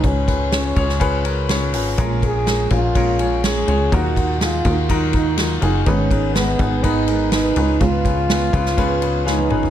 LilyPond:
<<
  \new Staff \with { instrumentName = "Upright piano" } { \time 4/4 \key des \mixolydian \tempo 4 = 124 <des' f' aes' ces''>8 <des' f' aes' ces''>8 <des' f' aes' des''>8 <des' f' aes' des''>8 <des' f' aes' ces''>8 <des' f' aes' bes'>8 <des' f' aes' des''>8 <des' f' aes' ces''>8 | <des' f' aes' bes'>8 <des' f' aes' des''>8 <des' f' aes' bes'>8 <des' f' aes' bes'>8 <des' f' aes' bes'>8 <des' f' aes' des''>8 <des' f' aes' des''>8 <des' f' aes' des''>8 | <ees' f' ges' bes'>8 <ees' f' ges' bes'>8 <ees' f' ges' aes'>8 <ees' f' ges' bes'>8 <ees' f' ges' bes'>8 <ees' f' ges' bes'>8 <ees' f' ges' bes'>8 <ees' f' ges' aes'>8 | <ces' ees' aes' ces''>8 <ces' ees' aes' bes'>8 <ces' ees' aes' ces''>8 <ces' ees' aes' ces''>8 <ces' ees' aes' ces''>8 <ces' ees' aes' bes'>8 <ces' ees' aes' bes'>8 <des' f' aes' ces''>8~ |
<des' f' aes' ces''>8 <des' f' aes' ces''>8 <des' f' aes' ces''>8 <des' f' aes' ces''>8 <des' f' aes' ces''>8 <des' f' aes' ces''>8 <des' f' aes' ces''>8 <des' f' aes' ces''>8 | }
  \new Staff \with { instrumentName = "Upright piano" } { \clef bass \time 4/4 \key des \mixolydian aes,4 r2. | r1 | bes,4. r2 r8 | <aes, ees>4. r2 aes,8~ |
aes,4 r4. aes''8 f''4 | }
  \new Staff \with { instrumentName = "French horn" } { \time 4/4 \key des \mixolydian des'2. r4 | r8 aes'4 f'4. aes'4 | ges'4 f'4 ees'4 r4 | des'4 ces'4 ees'4 ees'4 |
f'2. ees'4 | }
  \new Staff \with { instrumentName = "Steel-string acoustic guitar" } { \time 4/4 \key des \mixolydian r1 | <bes, f aes des' f' bes'>8 <aes des' f' bes'>8 <aes des' f' bes'>8 <aes des' f' bes'>8 <bes, f aes des' f' bes'>8 <aes des' f' bes'>8 <aes des' f' bes'>8 <aes des' f' bes'>8 | <ees ges ees' f' bes'>8 <ees' f' bes'>8 <ges ees' f' bes'>8 <ees' f' bes'>8 <ees ges ees' f' bes'>8 <ees' f' bes'>8 <ges ees' f' bes'>8 <ees' f' bes'>8 | <aes, ees aes ces' ees' ces''>8 <aes ces' ees' ces''>8 <aes ces' ees' ces''>8 <aes ces' ees' ces''>8 <aes, ees aes ces' ees' ces''>8 <aes ces' ees' ces''>8 <aes ces' ees' ces''>8 <ces' ces''>8 |
<des aes ces' f' ces''>8 <ces' f' ces''>8 <aes ces' f' ces''>8 <ces' f' ces''>8 <des aes ces' f' ces''>8 <ces' f' ces''>8 <aes ces' f' ces''>8 <ces' f' ces''>8 | }
  \new Staff \with { instrumentName = "Analog synth bass" } { \clef bass \time 4/4 \key des \mixolydian des,4. des,2 aes,,8 | bes,,4. bes,,2 des,8 | ees,4. ees,2 ges,,8 | aes,,4. aes,,2 des,8 |
des,4. des,2 aes,,8 | }
  \new DrumStaff \with { instrumentName = "Drums" } \drummode { \time 4/4 <bd cymr>8 <bd cymr>8 <cymr sn>8 <bd cymr>16 sn16 <bd cymr>8 cymr8 <cymr sn>8 <hho cymr>8 | <hhp bd cymr>8 <bd cymr>8 <cymr sn>8 <bd cymr>8 <bd cymr>8 cymr8 <cymr sn>8 cymr8 | <bd cymr>8 <bd cymr>8 <cymr sn>8 <bd cymr>8 <bd cymr>8 <bd cymr>8 <cymr sn>8 cymr8 | <bd cymr>8 <bd cymr>8 <cymr sn>8 <bd cymr>8 <bd cymr>8 cymr8 <cymr sn>8 cymr8 |
<bd cymr>8 <bd cymr>8 <cymr sn>8 <bd cymr>16 sn16 <bd cymr>8 cymr8 sn16 tommh16 toml16 tomfh16 | }
>>